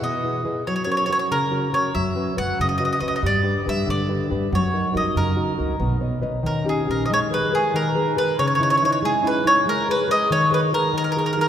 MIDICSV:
0, 0, Header, 1, 4, 480
1, 0, Start_track
1, 0, Tempo, 427960
1, 745, Time_signature, 6, 3, 24, 8
1, 12884, End_track
2, 0, Start_track
2, 0, Title_t, "Mandolin"
2, 0, Program_c, 0, 25
2, 41, Note_on_c, 0, 75, 73
2, 706, Note_off_c, 0, 75, 0
2, 753, Note_on_c, 0, 73, 68
2, 829, Note_off_c, 0, 73, 0
2, 849, Note_on_c, 0, 73, 58
2, 919, Note_off_c, 0, 73, 0
2, 947, Note_on_c, 0, 73, 64
2, 1011, Note_off_c, 0, 73, 0
2, 1027, Note_on_c, 0, 73, 53
2, 1074, Note_off_c, 0, 73, 0
2, 1088, Note_on_c, 0, 73, 70
2, 1165, Note_off_c, 0, 73, 0
2, 1188, Note_on_c, 0, 73, 61
2, 1248, Note_off_c, 0, 73, 0
2, 1261, Note_on_c, 0, 73, 73
2, 1324, Note_off_c, 0, 73, 0
2, 1338, Note_on_c, 0, 73, 62
2, 1416, Note_off_c, 0, 73, 0
2, 1477, Note_on_c, 0, 70, 77
2, 1922, Note_off_c, 0, 70, 0
2, 1952, Note_on_c, 0, 73, 72
2, 2175, Note_off_c, 0, 73, 0
2, 2183, Note_on_c, 0, 76, 68
2, 2636, Note_off_c, 0, 76, 0
2, 2672, Note_on_c, 0, 78, 84
2, 2895, Note_off_c, 0, 78, 0
2, 2927, Note_on_c, 0, 75, 79
2, 3002, Note_off_c, 0, 75, 0
2, 3015, Note_on_c, 0, 75, 53
2, 3094, Note_off_c, 0, 75, 0
2, 3116, Note_on_c, 0, 75, 64
2, 3183, Note_off_c, 0, 75, 0
2, 3196, Note_on_c, 0, 75, 54
2, 3268, Note_off_c, 0, 75, 0
2, 3281, Note_on_c, 0, 75, 64
2, 3353, Note_off_c, 0, 75, 0
2, 3370, Note_on_c, 0, 75, 60
2, 3439, Note_off_c, 0, 75, 0
2, 3453, Note_on_c, 0, 75, 59
2, 3522, Note_off_c, 0, 75, 0
2, 3542, Note_on_c, 0, 75, 57
2, 3609, Note_off_c, 0, 75, 0
2, 3661, Note_on_c, 0, 74, 79
2, 4093, Note_off_c, 0, 74, 0
2, 4139, Note_on_c, 0, 76, 87
2, 4348, Note_off_c, 0, 76, 0
2, 4377, Note_on_c, 0, 74, 73
2, 5036, Note_off_c, 0, 74, 0
2, 5104, Note_on_c, 0, 73, 77
2, 5533, Note_off_c, 0, 73, 0
2, 5574, Note_on_c, 0, 75, 68
2, 5797, Note_off_c, 0, 75, 0
2, 5801, Note_on_c, 0, 70, 68
2, 7237, Note_off_c, 0, 70, 0
2, 7250, Note_on_c, 0, 70, 63
2, 7467, Note_off_c, 0, 70, 0
2, 7505, Note_on_c, 0, 68, 56
2, 7714, Note_off_c, 0, 68, 0
2, 7747, Note_on_c, 0, 70, 61
2, 7899, Note_off_c, 0, 70, 0
2, 7914, Note_on_c, 0, 75, 51
2, 7964, Note_off_c, 0, 75, 0
2, 8003, Note_on_c, 0, 73, 76
2, 8062, Note_off_c, 0, 73, 0
2, 8230, Note_on_c, 0, 71, 76
2, 8438, Note_off_c, 0, 71, 0
2, 8466, Note_on_c, 0, 68, 72
2, 8697, Note_off_c, 0, 68, 0
2, 8702, Note_on_c, 0, 70, 78
2, 9137, Note_off_c, 0, 70, 0
2, 9179, Note_on_c, 0, 71, 81
2, 9407, Note_off_c, 0, 71, 0
2, 9412, Note_on_c, 0, 73, 77
2, 9484, Note_off_c, 0, 73, 0
2, 9505, Note_on_c, 0, 73, 54
2, 9574, Note_off_c, 0, 73, 0
2, 9592, Note_on_c, 0, 73, 65
2, 9659, Note_off_c, 0, 73, 0
2, 9679, Note_on_c, 0, 73, 64
2, 9745, Note_off_c, 0, 73, 0
2, 9761, Note_on_c, 0, 73, 73
2, 9828, Note_off_c, 0, 73, 0
2, 9841, Note_on_c, 0, 73, 59
2, 9910, Note_off_c, 0, 73, 0
2, 9927, Note_on_c, 0, 73, 66
2, 9995, Note_off_c, 0, 73, 0
2, 10010, Note_on_c, 0, 73, 67
2, 10078, Note_off_c, 0, 73, 0
2, 10154, Note_on_c, 0, 68, 80
2, 10382, Note_off_c, 0, 68, 0
2, 10398, Note_on_c, 0, 71, 67
2, 10600, Note_off_c, 0, 71, 0
2, 10624, Note_on_c, 0, 73, 86
2, 10831, Note_off_c, 0, 73, 0
2, 10870, Note_on_c, 0, 70, 85
2, 11076, Note_off_c, 0, 70, 0
2, 11115, Note_on_c, 0, 71, 83
2, 11316, Note_off_c, 0, 71, 0
2, 11340, Note_on_c, 0, 75, 92
2, 11547, Note_off_c, 0, 75, 0
2, 11577, Note_on_c, 0, 73, 87
2, 11788, Note_off_c, 0, 73, 0
2, 11822, Note_on_c, 0, 71, 78
2, 11882, Note_off_c, 0, 71, 0
2, 12049, Note_on_c, 0, 70, 79
2, 12284, Note_off_c, 0, 70, 0
2, 12311, Note_on_c, 0, 70, 79
2, 12370, Note_off_c, 0, 70, 0
2, 12385, Note_on_c, 0, 70, 61
2, 12449, Note_off_c, 0, 70, 0
2, 12470, Note_on_c, 0, 70, 69
2, 12534, Note_off_c, 0, 70, 0
2, 12546, Note_on_c, 0, 70, 58
2, 12614, Note_off_c, 0, 70, 0
2, 12630, Note_on_c, 0, 70, 73
2, 12692, Note_off_c, 0, 70, 0
2, 12705, Note_on_c, 0, 70, 63
2, 12777, Note_off_c, 0, 70, 0
2, 12800, Note_on_c, 0, 70, 77
2, 12860, Note_off_c, 0, 70, 0
2, 12884, End_track
3, 0, Start_track
3, 0, Title_t, "Nylon-string guitar"
3, 0, Program_c, 1, 24
3, 0, Note_on_c, 1, 64, 39
3, 0, Note_on_c, 1, 68, 37
3, 0, Note_on_c, 1, 71, 46
3, 18, Note_on_c, 1, 47, 55
3, 160, Note_off_c, 1, 64, 0
3, 164, Note_off_c, 1, 68, 0
3, 168, Note_off_c, 1, 71, 0
3, 262, Note_on_c, 1, 64, 39
3, 271, Note_on_c, 1, 68, 35
3, 273, Note_on_c, 1, 71, 39
3, 478, Note_off_c, 1, 64, 0
3, 487, Note_off_c, 1, 47, 0
3, 489, Note_off_c, 1, 68, 0
3, 489, Note_off_c, 1, 71, 0
3, 492, Note_on_c, 1, 64, 41
3, 502, Note_on_c, 1, 68, 40
3, 504, Note_on_c, 1, 71, 39
3, 688, Note_off_c, 1, 64, 0
3, 694, Note_off_c, 1, 71, 0
3, 695, Note_off_c, 1, 68, 0
3, 755, Note_on_c, 1, 54, 65
3, 968, Note_on_c, 1, 61, 38
3, 973, Note_on_c, 1, 66, 32
3, 979, Note_on_c, 1, 70, 43
3, 1209, Note_off_c, 1, 61, 0
3, 1211, Note_off_c, 1, 66, 0
3, 1214, Note_off_c, 1, 70, 0
3, 1216, Note_off_c, 1, 54, 0
3, 1222, Note_on_c, 1, 61, 35
3, 1227, Note_on_c, 1, 66, 40
3, 1228, Note_on_c, 1, 70, 42
3, 1472, Note_on_c, 1, 49, 57
3, 1610, Note_off_c, 1, 61, 0
3, 1611, Note_off_c, 1, 66, 0
3, 1613, Note_off_c, 1, 70, 0
3, 1690, Note_on_c, 1, 61, 39
3, 1697, Note_on_c, 1, 66, 36
3, 1704, Note_on_c, 1, 70, 48
3, 1916, Note_off_c, 1, 66, 0
3, 1918, Note_off_c, 1, 61, 0
3, 1928, Note_off_c, 1, 70, 0
3, 1930, Note_on_c, 1, 61, 37
3, 1931, Note_on_c, 1, 66, 35
3, 1938, Note_off_c, 1, 49, 0
3, 1942, Note_on_c, 1, 70, 36
3, 2130, Note_off_c, 1, 66, 0
3, 2131, Note_off_c, 1, 61, 0
3, 2138, Note_off_c, 1, 70, 0
3, 2181, Note_on_c, 1, 54, 61
3, 2414, Note_on_c, 1, 61, 38
3, 2421, Note_on_c, 1, 66, 34
3, 2422, Note_on_c, 1, 71, 43
3, 2637, Note_off_c, 1, 61, 0
3, 2643, Note_off_c, 1, 71, 0
3, 2648, Note_off_c, 1, 66, 0
3, 2651, Note_on_c, 1, 61, 37
3, 2654, Note_off_c, 1, 54, 0
3, 2659, Note_on_c, 1, 71, 39
3, 2660, Note_on_c, 1, 66, 41
3, 2905, Note_on_c, 1, 49, 54
3, 3044, Note_off_c, 1, 61, 0
3, 3048, Note_off_c, 1, 71, 0
3, 3050, Note_off_c, 1, 66, 0
3, 3137, Note_on_c, 1, 61, 38
3, 3141, Note_on_c, 1, 66, 37
3, 3145, Note_on_c, 1, 71, 41
3, 3362, Note_off_c, 1, 61, 0
3, 3372, Note_off_c, 1, 66, 0
3, 3374, Note_off_c, 1, 49, 0
3, 3376, Note_on_c, 1, 61, 38
3, 3377, Note_off_c, 1, 71, 0
3, 3385, Note_on_c, 1, 66, 33
3, 3390, Note_on_c, 1, 71, 42
3, 3573, Note_off_c, 1, 61, 0
3, 3579, Note_off_c, 1, 66, 0
3, 3582, Note_off_c, 1, 71, 0
3, 3626, Note_on_c, 1, 55, 60
3, 3851, Note_on_c, 1, 62, 40
3, 3855, Note_on_c, 1, 67, 39
3, 3860, Note_on_c, 1, 71, 42
3, 4087, Note_off_c, 1, 62, 0
3, 4094, Note_off_c, 1, 55, 0
3, 4095, Note_off_c, 1, 67, 0
3, 4095, Note_off_c, 1, 71, 0
3, 4101, Note_on_c, 1, 62, 45
3, 4108, Note_on_c, 1, 67, 38
3, 4110, Note_on_c, 1, 71, 41
3, 4333, Note_on_c, 1, 50, 63
3, 4489, Note_off_c, 1, 62, 0
3, 4493, Note_off_c, 1, 71, 0
3, 4494, Note_off_c, 1, 67, 0
3, 4583, Note_on_c, 1, 62, 47
3, 4585, Note_on_c, 1, 71, 47
3, 4589, Note_on_c, 1, 67, 43
3, 4803, Note_off_c, 1, 62, 0
3, 4807, Note_off_c, 1, 50, 0
3, 4815, Note_off_c, 1, 67, 0
3, 4816, Note_on_c, 1, 62, 43
3, 4822, Note_off_c, 1, 71, 0
3, 4829, Note_on_c, 1, 67, 39
3, 4835, Note_on_c, 1, 71, 47
3, 5012, Note_off_c, 1, 62, 0
3, 5019, Note_off_c, 1, 67, 0
3, 5023, Note_off_c, 1, 71, 0
3, 5074, Note_on_c, 1, 54, 58
3, 5309, Note_on_c, 1, 63, 38
3, 5311, Note_on_c, 1, 70, 43
3, 5313, Note_on_c, 1, 66, 33
3, 5519, Note_off_c, 1, 63, 0
3, 5521, Note_off_c, 1, 66, 0
3, 5528, Note_off_c, 1, 70, 0
3, 5532, Note_on_c, 1, 63, 40
3, 5536, Note_off_c, 1, 54, 0
3, 5537, Note_on_c, 1, 66, 36
3, 5542, Note_on_c, 1, 70, 50
3, 5770, Note_on_c, 1, 49, 57
3, 5923, Note_off_c, 1, 63, 0
3, 5924, Note_off_c, 1, 66, 0
3, 5928, Note_off_c, 1, 70, 0
3, 6013, Note_on_c, 1, 63, 40
3, 6018, Note_on_c, 1, 66, 34
3, 6027, Note_on_c, 1, 70, 44
3, 6231, Note_off_c, 1, 63, 0
3, 6242, Note_off_c, 1, 66, 0
3, 6243, Note_off_c, 1, 49, 0
3, 6244, Note_on_c, 1, 63, 36
3, 6246, Note_off_c, 1, 70, 0
3, 6254, Note_on_c, 1, 66, 34
3, 6262, Note_on_c, 1, 70, 40
3, 6444, Note_off_c, 1, 63, 0
3, 6451, Note_off_c, 1, 66, 0
3, 6453, Note_off_c, 1, 70, 0
3, 6501, Note_on_c, 1, 59, 57
3, 6720, Note_off_c, 1, 59, 0
3, 6734, Note_on_c, 1, 59, 38
3, 6741, Note_on_c, 1, 73, 37
3, 6743, Note_on_c, 1, 75, 43
3, 6966, Note_off_c, 1, 75, 0
3, 6968, Note_off_c, 1, 73, 0
3, 6971, Note_on_c, 1, 71, 38
3, 6981, Note_on_c, 1, 73, 36
3, 6981, Note_on_c, 1, 75, 46
3, 7124, Note_off_c, 1, 59, 0
3, 7170, Note_off_c, 1, 71, 0
3, 7175, Note_off_c, 1, 75, 0
3, 7176, Note_off_c, 1, 73, 0
3, 7212, Note_on_c, 1, 51, 55
3, 7450, Note_on_c, 1, 61, 40
3, 7454, Note_on_c, 1, 63, 35
3, 7464, Note_on_c, 1, 67, 45
3, 7676, Note_off_c, 1, 61, 0
3, 7687, Note_off_c, 1, 63, 0
3, 7690, Note_off_c, 1, 51, 0
3, 7690, Note_on_c, 1, 61, 37
3, 7691, Note_off_c, 1, 67, 0
3, 7699, Note_on_c, 1, 63, 38
3, 7707, Note_on_c, 1, 67, 43
3, 7892, Note_off_c, 1, 61, 0
3, 7898, Note_off_c, 1, 63, 0
3, 7901, Note_off_c, 1, 67, 0
3, 7959, Note_on_c, 1, 56, 66
3, 8195, Note_on_c, 1, 70, 43
3, 8196, Note_on_c, 1, 68, 36
3, 8200, Note_on_c, 1, 71, 46
3, 8421, Note_off_c, 1, 68, 0
3, 8421, Note_off_c, 1, 70, 0
3, 8425, Note_off_c, 1, 56, 0
3, 8432, Note_off_c, 1, 71, 0
3, 8432, Note_on_c, 1, 68, 45
3, 8438, Note_on_c, 1, 70, 41
3, 8446, Note_on_c, 1, 71, 49
3, 8676, Note_on_c, 1, 51, 59
3, 8820, Note_off_c, 1, 68, 0
3, 8821, Note_off_c, 1, 70, 0
3, 8827, Note_off_c, 1, 71, 0
3, 8915, Note_on_c, 1, 70, 40
3, 8917, Note_on_c, 1, 68, 46
3, 8923, Note_on_c, 1, 71, 54
3, 9143, Note_off_c, 1, 51, 0
3, 9144, Note_off_c, 1, 71, 0
3, 9145, Note_off_c, 1, 68, 0
3, 9148, Note_off_c, 1, 70, 0
3, 9155, Note_on_c, 1, 68, 42
3, 9163, Note_on_c, 1, 70, 41
3, 9164, Note_on_c, 1, 71, 45
3, 9349, Note_off_c, 1, 71, 0
3, 9350, Note_off_c, 1, 68, 0
3, 9351, Note_off_c, 1, 70, 0
3, 9410, Note_on_c, 1, 49, 68
3, 9626, Note_on_c, 1, 61, 39
3, 9631, Note_on_c, 1, 63, 40
3, 9643, Note_on_c, 1, 64, 45
3, 9861, Note_off_c, 1, 61, 0
3, 9870, Note_off_c, 1, 49, 0
3, 9873, Note_off_c, 1, 63, 0
3, 9875, Note_on_c, 1, 61, 42
3, 9876, Note_off_c, 1, 64, 0
3, 9886, Note_on_c, 1, 63, 38
3, 9892, Note_on_c, 1, 64, 47
3, 10120, Note_on_c, 1, 56, 64
3, 10259, Note_off_c, 1, 61, 0
3, 10266, Note_off_c, 1, 63, 0
3, 10268, Note_off_c, 1, 64, 0
3, 10348, Note_on_c, 1, 61, 43
3, 10354, Note_on_c, 1, 63, 39
3, 10359, Note_on_c, 1, 64, 47
3, 10583, Note_off_c, 1, 56, 0
3, 10583, Note_off_c, 1, 61, 0
3, 10587, Note_off_c, 1, 63, 0
3, 10589, Note_off_c, 1, 64, 0
3, 10596, Note_on_c, 1, 61, 43
3, 10601, Note_on_c, 1, 63, 39
3, 10603, Note_on_c, 1, 64, 53
3, 10785, Note_off_c, 1, 61, 0
3, 10788, Note_off_c, 1, 63, 0
3, 10789, Note_off_c, 1, 64, 0
3, 10829, Note_on_c, 1, 56, 70
3, 11080, Note_on_c, 1, 68, 42
3, 11085, Note_on_c, 1, 70, 40
3, 11087, Note_on_c, 1, 71, 42
3, 11294, Note_off_c, 1, 56, 0
3, 11294, Note_off_c, 1, 68, 0
3, 11296, Note_off_c, 1, 70, 0
3, 11306, Note_off_c, 1, 71, 0
3, 11306, Note_on_c, 1, 68, 47
3, 11312, Note_on_c, 1, 70, 38
3, 11320, Note_on_c, 1, 71, 52
3, 11556, Note_on_c, 1, 51, 68
3, 11692, Note_off_c, 1, 68, 0
3, 11693, Note_off_c, 1, 70, 0
3, 11699, Note_off_c, 1, 71, 0
3, 11784, Note_on_c, 1, 68, 44
3, 11792, Note_on_c, 1, 70, 40
3, 11795, Note_on_c, 1, 71, 57
3, 12015, Note_off_c, 1, 68, 0
3, 12018, Note_off_c, 1, 51, 0
3, 12022, Note_off_c, 1, 70, 0
3, 12022, Note_off_c, 1, 71, 0
3, 12028, Note_on_c, 1, 68, 42
3, 12034, Note_on_c, 1, 70, 37
3, 12038, Note_on_c, 1, 71, 47
3, 12219, Note_off_c, 1, 68, 0
3, 12223, Note_off_c, 1, 71, 0
3, 12224, Note_off_c, 1, 70, 0
3, 12261, Note_on_c, 1, 51, 62
3, 12516, Note_on_c, 1, 63, 41
3, 12522, Note_on_c, 1, 68, 40
3, 12531, Note_on_c, 1, 70, 48
3, 12731, Note_off_c, 1, 51, 0
3, 12733, Note_off_c, 1, 63, 0
3, 12737, Note_off_c, 1, 70, 0
3, 12739, Note_off_c, 1, 68, 0
3, 12746, Note_on_c, 1, 63, 43
3, 12752, Note_on_c, 1, 68, 42
3, 12753, Note_on_c, 1, 70, 48
3, 12884, Note_off_c, 1, 63, 0
3, 12884, Note_off_c, 1, 68, 0
3, 12884, Note_off_c, 1, 70, 0
3, 12884, End_track
4, 0, Start_track
4, 0, Title_t, "Upright bass"
4, 0, Program_c, 2, 32
4, 2189, Note_on_c, 2, 42, 78
4, 2504, Note_off_c, 2, 42, 0
4, 2670, Note_on_c, 2, 42, 72
4, 2826, Note_off_c, 2, 42, 0
4, 2909, Note_on_c, 2, 42, 72
4, 3222, Note_off_c, 2, 42, 0
4, 3383, Note_on_c, 2, 37, 59
4, 3541, Note_off_c, 2, 37, 0
4, 3622, Note_on_c, 2, 43, 89
4, 3937, Note_off_c, 2, 43, 0
4, 4116, Note_on_c, 2, 43, 79
4, 4269, Note_off_c, 2, 43, 0
4, 4351, Note_on_c, 2, 43, 66
4, 4663, Note_off_c, 2, 43, 0
4, 4836, Note_on_c, 2, 43, 70
4, 4989, Note_off_c, 2, 43, 0
4, 5074, Note_on_c, 2, 42, 92
4, 5383, Note_off_c, 2, 42, 0
4, 5548, Note_on_c, 2, 42, 78
4, 5703, Note_off_c, 2, 42, 0
4, 5784, Note_on_c, 2, 42, 77
4, 6097, Note_off_c, 2, 42, 0
4, 6274, Note_on_c, 2, 37, 66
4, 6427, Note_off_c, 2, 37, 0
4, 6500, Note_on_c, 2, 35, 86
4, 6815, Note_off_c, 2, 35, 0
4, 6986, Note_on_c, 2, 35, 73
4, 7143, Note_off_c, 2, 35, 0
4, 7227, Note_on_c, 2, 39, 59
4, 7542, Note_off_c, 2, 39, 0
4, 7724, Note_on_c, 2, 34, 65
4, 7877, Note_off_c, 2, 34, 0
4, 12884, End_track
0, 0, End_of_file